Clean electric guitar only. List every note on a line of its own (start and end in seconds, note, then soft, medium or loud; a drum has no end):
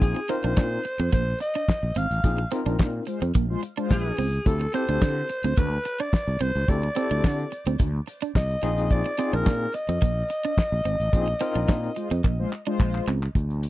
0.16 muted clean electric guitar stroke soft
0.29 0.39 C4 medium
0.44 0.52 D4 medium
0.57 0.67 D4 loud
0.85 muted clean electric guitar stroke soft
1.00 1.08 C4 medium
1.12 1.22 A#3 medium
1.40 muted clean electric guitar stroke soft
1.55 1.64 D4 medium
1.96 2.06 C4 medium
2.38 muted clean electric guitar stroke soft
2.52 2.61 C4 loud
2.66 2.75 D4 medium
2.79 2.89 D4 medium
3.07 muted clean electric guitar stroke soft
3.22 3.30 C4 medium
3.35 3.45 A#3 medium
3.63 muted clean electric guitar stroke soft
3.77 3.86 D4 medium
4.18 4.28 C4 medium
4.61 muted clean electric guitar stroke soft
4.74 4.84 C4 medium
4.89 4.97 D4 medium
5.02 5.11 D4 medium
5.30 muted clean electric guitar stroke soft
5.44 5.53 C4 medium
5.58 5.67 A3 medium
5.85 muted clean electric guitar stroke soft
6.00 6.08 D4 medium
6.41 6.50 C4 medium
6.83 muted clean electric guitar stroke soft
6.96 7.06 C4 loud
7.11 7.19 D4 medium
7.24 7.34 D4 medium
7.52 muted clean electric guitar stroke soft
7.67 7.75 C4 medium
7.80 7.89 A3 loud
8.07 muted clean electric guitar stroke soft
8.22 8.31 D4 medium
8.63 8.72 C4 medium
9.06 muted clean electric guitar stroke soft
9.19 9.28 C4 loud
9.33 9.42 D4 medium
9.46 9.56 D4 loud
9.74 muted clean electric guitar stroke soft
9.89 9.97 C4 medium
10.02 10.11 A#3 loud
10.30 muted clean electric guitar stroke soft
10.45 10.53 D4 medium
10.85 10.95 C4 medium
11.28 muted clean electric guitar stroke soft
11.41 11.50 C4 loud
11.56 11.64 D4 medium
11.68 11.78 D4 medium
11.96 muted clean electric guitar stroke soft
12.11 12.20 C4 medium
12.25 12.34 A#3 medium
12.52 muted clean electric guitar stroke soft
12.67 12.75 D4 medium
13.08 13.17 C4 medium